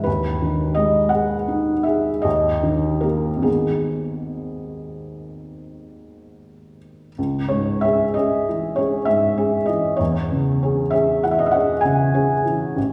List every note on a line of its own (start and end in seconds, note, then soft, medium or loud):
0.04 2.21 D#2 soft
0.04 0.75 B4 medium
0.42 0.97 D#3 soft
0.75 1.34 G#3 soft
0.75 1.10 D#5 medium
1.09 1.71 G#4 soft
1.09 1.85 F#5 medium
1.48 2.09 D#4 soft
1.83 2.25 G#4 soft
1.83 2.23 E5 soft
2.22 3.43 D#2 soft
2.22 3.03 D#5 medium
2.63 3.29 D#3 soft
3.01 3.42 A#3 soft
3.01 3.42 G4 soft
3.01 3.45 A#4 soft
3.36 7.08 G#1 soft
3.42 7.11 D#3 soft
3.42 7.12 B3 soft
3.42 6.77 G#4 soft
7.18 9.96 C#2 soft
7.49 8.04 G#2 soft
7.49 7.83 C#5 medium
7.81 8.14 C#4 soft
7.81 8.14 G#4 soft
7.81 8.15 E5 medium
8.14 8.45 C#4 soft
8.14 8.46 G#4 soft
8.14 8.77 D#5 medium
8.49 8.97 E3 soft
8.76 9.05 C#4 soft
8.76 9.06 G#4 soft
8.76 9.07 C#5 medium
9.05 9.56 G#2 soft
9.05 9.67 E5 medium
9.37 9.65 C#4 soft
9.37 9.65 G#4 soft
9.66 9.99 E3 soft
9.66 9.98 D#5 medium
9.97 12.73 E2 soft
9.97 10.93 C#5 soft
10.31 10.82 C#3 soft
10.63 10.91 C#4 soft
10.63 10.92 G#4 soft
10.91 11.21 C#4 soft
10.91 11.21 G#4 soft
10.91 11.22 E5 medium
11.23 11.73 E3 soft
11.23 11.32 F#5 medium
11.31 11.39 E5 medium
11.39 11.47 D#5 medium
11.46 11.54 E5 soft
11.51 11.81 C#4 soft
11.51 11.82 G#4 soft
11.51 11.83 F#5 medium
11.81 12.33 C#3 soft
11.81 12.75 G#5 medium
12.14 12.42 C#4 soft
12.14 12.43 G#4 soft
12.45 12.76 E3 soft
12.76 12.93 A1 soft